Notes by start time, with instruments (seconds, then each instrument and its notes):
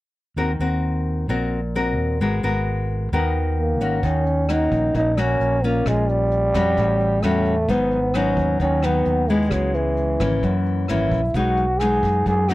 0.36 fingered electric bass D#2, nylon-string guitar D#3 C4 F#4 A#4
0.59 fingered electric bass D#2, nylon-string guitar C4 F#4 A#4
1.28 fingered electric bass A#1, nylon-string guitar A#2 C4 F#4 A#4
1.75 nylon-string guitar C4 F#4 A#4
1.97 fingered electric bass D#2
2.20 fingered electric bass G#1, nylon-string guitar G#3 B3 F#4 A#4
2.43 fingered electric bass G#1, nylon-string guitar B3 F#4 A#4
3.12 fingered electric bass D#2, nylon-string guitar D#3 B3 F#4 A#4
3.60 trombone A#3
3.80 fingered electric bass G#1, nylon-string guitar C#4 F#4 A#4
4.03 fingered electric bass D#2, nylon-string guitar D#3, trombone C#4, kick, closed hi-hat
4.26 closed hi-hat
4.49 nylon-string guitar A#3 C#4 F#4, trombone D#4, cross-stick, closed hi-hat
4.72 fingered electric bass A#1, kick, closed hi-hat
4.95 fingered electric bass A#1, nylon-string guitar A#2, trombone D#4, kick, closed hi-hat
5.17 nylon-string guitar A#3 C#4 F#4, trombone C#4, cross-stick, closed hi-hat
5.40 fingered electric bass A#1, closed hi-hat
5.63 trombone A#3, nylon-string guitar C#4 F4, closed hi-hat
5.86 fingered electric bass A#1, nylon-string guitar A#2, trombone G#3, kick, cross-stick, closed hi-hat
6.09 trombone G3, closed hi-hat
6.32 closed hi-hat
6.54 fingered electric bass F2, nylon-string guitar G3 C#4 F#4, kick, cross-stick, closed hi-hat
6.77 fingered electric bass A1, nylon-string guitar A2, kick, closed hi-hat
7.00 closed hi-hat
7.23 fingered electric bass E2, nylon-string guitar G3 C#4 F#4, trombone A3, cross-stick, closed hi-hat
7.46 closed hi-hat
7.68 fingered electric bass G#1, nylon-string guitar G#2 F#3 B3 D#4, trombone B3, kick, closed hi-hat
7.91 closed hi-hat
8.14 nylon-string guitar F#3 B3 D#4, trombone C#4, cross-stick, closed hi-hat
8.36 fingered electric bass D#2, kick, closed hi-hat
8.60 fingered electric bass D#2, nylon-string guitar D#3, trombone C#4, kick, closed hi-hat
8.82 nylon-string guitar F#3 B3 D#4, trombone B3, cross-stick, closed hi-hat
9.05 fingered electric bass D#2, closed hi-hat
9.28 nylon-string guitar G#3 B3 E4, trombone G#3, closed hi-hat
9.51 fingered electric bass C#2, nylon-string guitar C#3, trombone F#3, kick, cross-stick, closed hi-hat
9.74 trombone E3, closed hi-hat
9.97 closed hi-hat
10.20 fingered electric bass G#1, nylon-string guitar E3 A#3 C#4, kick, cross-stick, closed hi-hat
10.43 fingered electric bass F#2, nylon-string guitar F#2, kick, closed hi-hat
10.66 closed hi-hat
10.88 fingered electric bass G#1, nylon-string guitar E3 A#3 C#4, trombone E4, cross-stick, closed hi-hat
11.11 fingered electric bass A#1, kick, closed hi-hat
11.34 fingered electric bass B1, nylon-string guitar B2 F#3 G#3 D#4, trombone F#4, kick, closed hi-hat
11.57 closed hi-hat
11.80 nylon-string guitar F#3 G#3 D#4, trombone G#4, cross-stick, closed hi-hat
12.03 fingered electric bass F#2, kick, closed hi-hat
12.26 fingered electric bass F#2, nylon-string guitar F#2, trombone G#4, kick, closed hi-hat
12.49 nylon-string guitar F#3 G#3 D#4, trombone F#4, cross-stick, closed hi-hat